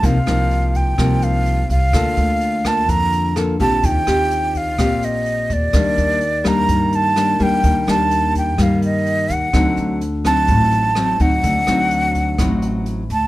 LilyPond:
<<
  \new Staff \with { instrumentName = "Flute" } { \time 4/4 \key ees \lydian \tempo 4 = 126 f''4. g''4 f''4 f''8~ | f''4. a''8 bes''4 r8 a''8 | g''4. f''4 ees''4 d''8~ | d''4. bes''4 a''4 g''8~ |
g''8 a''4 g''8 f''8 ees''4 ges''8~ | ges''4 r8 a''2 fis''8~ | fis''2. r8 a''8 | }
  \new Staff \with { instrumentName = "Nylon-string guitar" } { \time 4/4 \key ees \lydian << { <f bes ees'>8 <f bes ees'>4. <f bes ees'>4. r8 | <bes f' a'>4. <bes f'>4. <bes f' a'>8 <c' f' g'>8~ | <c' f' g'>8 <c' f' g'>4. <c' f' g'>2 | <g bes d'>4 r8 <g bes d'>4. <g bes d'>8 <g bes d'>8~ |
<g bes d'>8 <g bes d'>4. <g bes>2 | <fis c' ees'>4 r8 <fis c' ees'>4. <fis c' ees'>8 <fis c' ees'>8~ | <fis c' ees'>8 <fis c' ees'>4. <fis c' ees'>4. r8 | } \\ { c2 c2 | d2 d2 | ees2 bes,2 | ees2 ees2 |
ees2 ees2 | d2 a,2 | d2 a,2 | } >> }
  \new Staff \with { instrumentName = "Upright bass" } { \clef bass \time 4/4 \key ees \lydian c,16 r16 c,4. c,4. c,8 | d,16 r16 d,4. f,4. bes,,8 | ees,16 r16 ees,4. bes,,4. ees,8 | ees,16 r16 ees,4. g,4. ees,8 |
ees,16 r16 ees,4. g,4. ees,8 | d,16 r16 d,4. a,,4. d,8 | d,16 r16 d,4. a,,4. d,8 | }
  \new DrumStaff \with { instrumentName = "Drums" } \drummode { \time 4/4 <hh bd>8 <hh ss>8 hh8 <hh bd>8 <hh bd ss>8 hh8 hh8 <hh bd>8 | <hh bd ss>8 hh8 hh8 <hh bd ss>8 <hh bd>8 hh8 <hh ss>8 <hh bd>8 | <hh bd>8 <hh ss>8 hh8 <hh bd>8 <hh bd ss>8 hh8 hh8 <hh bd>8 | <hh bd ss>8 hh8 hh8 <hh bd ss>8 <hh bd>8 hh8 <hh ss>8 <hh bd>8 |
<hh bd>8 <hh ss>8 hh8 <hh bd>8 <hh bd ss>8 hh8 hh8 <hh bd>8 | <hh bd ss>8 hh8 hh8 <hh bd ss>8 <hh bd>8 hh8 <hh ss>8 <hh bd>8 | <hh bd>8 <hh ss>8 hh8 <hh bd>8 <hh bd ss>8 hh8 hh8 <hh bd>8 | }
>>